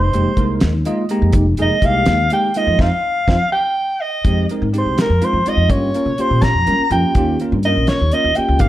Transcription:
Already playing: C5
0.13 F1 G#3 A#3 D#4 G4, closed hi-hat
0.37 C2 G#3 A#3 D#4 A#4, kick, closed hi-hat
0.60 D#2, snare, closed hi-hat
0.85 G#3 A#3 D#4 F4 D#5, closed hi-hat
1.09 G#3 A#3 D#4 G4 A#5, closed hi-hat
1.22 F2
1.32 F1, kick, closed hi-hat
1.57 F1 G#3 A#3 D#4 G#4, closed hi-hat
1.62 D#5
1.82 C2 G#3 A#3 D#4 G4 F5, kick, closed hi-hat
2.05 D#2, snare, closed hi-hat
2.30 G#3 A#3 D#4 G4 G5, closed hi-hat
2.54 G#3 A#3 D#4 F4 D#5, closed hi-hat
2.67 F2
2.79 F2 C4 D#4 F4 F5, kick, snare
3.28 F2 C4 D#4 F4, kick, snare
3.52 G5
4.01 D#5
4.24 F2 G#3 C4 D#4 G4, kick, closed hi-hat
4.49 G#3 C4 D#4 A#4, closed hi-hat
4.62 G#2
4.73 G#3 C4 D#4 G4, closed hi-hat
4.78 C5
4.86 C2
4.98 A#4, snare, closed hi-hat
5.10 F2
5.21 G#3 C4 D#4 F4 C5, closed hi-hat
5.33 F2
5.46 G#3 C4 D#4 F4 D#5, muted upright bass stroke, closed hi-hat
5.57 F2
5.70 G2 A#3 C#4 F4 G4 C#5, kick, closed hi-hat
5.94 A#3 C#4 F4 A#4, closed hi-hat
6.06 C#3
6.18 A#3 C#4 F4 G4 C5, muted upright bass stroke, closed hi-hat
6.30 A#2
6.42 A#5, kick, snare, closed hi-hat
6.55 F2
6.66 G3 A#3 C#4 F4 A#4, closed hi-hat
6.79 muted upright bass stroke
6.91 F2 A#3 C#4 F4 G4 G5, closed hi-hat
7.15 D#2 A#3 C#4 F4 G4, kick, closed hi-hat
7.40 A#3 C#4 F4 A#4, closed hi-hat
7.52 G2
7.63 A#3 C#4 F4 A#4 D#5, closed hi-hat
7.77 A#1
7.87 C#5, snare, closed hi-hat
8.01 D#2
8.11 A#3 C#4 F4 A#4 D#5, closed hi-hat
8.24 D#2
8.35 A#3 C#4 F4 G4 G5, muted upright bass stroke, closed hi-hat
8.48 C#2
8.59 G#1 A#3 C4 D#4 G4 F5, kick, closed hi-hat

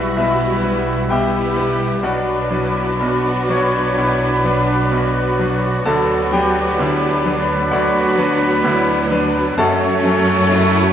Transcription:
Already playing: B1 B2 G3 B3 E4 F#4 G4 B4 E5 F#5 G5 B5
0.16 B1 B2 G3 B3 E4 B4 E5
0.63 G3 E4 B4
1.09 B1 B2 G3 B3 E4 G4 E5 G5
1.56 G3 E4 G4 B4
2.02 B1 B2 F#3 B3 D4 F#4 B4 D5 F#5 B5
2.51 F#3 D4 E4 B4
3.00 B1 B2 F#4
3.50 F#3 D4 B4 C#5 F#5 C#6
3.98 B1 B2 E4
4.44 F#3 D4 B4 F#5 B5
4.91 B1 B2 F#4
5.39 F#3 D4 B4
5.85 D2 D3 F#3 B3 D4 A4 B4 D5 A5 B5
6.32 F#3 D4 G4 B4 G5
6.78 D2 D3 E4
7.26 F#3 D4 B4
7.71 D2 D3 F#3 B3 D4 F#4 D5 F#5
8.18 F#3 D4 B4
8.64 D2 D3 E4
9.11 F#3 D4 B4
9.58 F#1 F#2 F#3 A3 C#4 A4 C#5 F#5 A5 C#6
10.04 F#3 C#4 C#5
10.50 F#1 F#2 E4

